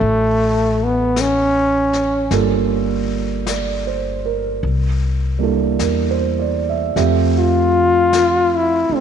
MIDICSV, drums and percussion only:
0, 0, Header, 1, 2, 480
1, 0, Start_track
1, 0, Tempo, 1158301
1, 958, Time_signature, 4, 2, 24, 8
1, 3731, End_track
2, 0, Start_track
2, 0, Title_t, "Drums"
2, 3, Note_on_c, 9, 25, 30
2, 482, Note_off_c, 9, 25, 0
2, 482, Note_on_c, 9, 25, 31
2, 482, Note_on_c, 9, 38, 40
2, 482, Note_on_c, 9, 44, 43
2, 523, Note_off_c, 9, 38, 0
2, 523, Note_off_c, 9, 44, 0
2, 800, Note_on_c, 9, 38, 24
2, 842, Note_off_c, 9, 38, 0
2, 956, Note_off_c, 9, 25, 0
2, 956, Note_on_c, 9, 25, 40
2, 956, Note_on_c, 9, 38, 32
2, 998, Note_off_c, 9, 38, 0
2, 1436, Note_off_c, 9, 25, 0
2, 1436, Note_on_c, 9, 25, 29
2, 1436, Note_on_c, 9, 38, 47
2, 1436, Note_on_c, 9, 44, 58
2, 1478, Note_off_c, 9, 38, 0
2, 1478, Note_off_c, 9, 44, 0
2, 1920, Note_off_c, 9, 25, 0
2, 1920, Note_on_c, 9, 25, 38
2, 2401, Note_off_c, 9, 25, 0
2, 2401, Note_on_c, 9, 25, 31
2, 2401, Note_on_c, 9, 38, 44
2, 2401, Note_on_c, 9, 44, 42
2, 2442, Note_off_c, 9, 38, 0
2, 2442, Note_off_c, 9, 44, 0
2, 2886, Note_off_c, 9, 25, 0
2, 2886, Note_on_c, 9, 25, 35
2, 2886, Note_on_c, 9, 38, 29
2, 2928, Note_off_c, 9, 38, 0
2, 3368, Note_off_c, 9, 25, 0
2, 3368, Note_on_c, 9, 25, 38
2, 3368, Note_on_c, 9, 38, 46
2, 3368, Note_on_c, 9, 44, 61
2, 3409, Note_off_c, 9, 38, 0
2, 3409, Note_off_c, 9, 44, 0
2, 3731, Note_off_c, 9, 25, 0
2, 3731, End_track
0, 0, End_of_file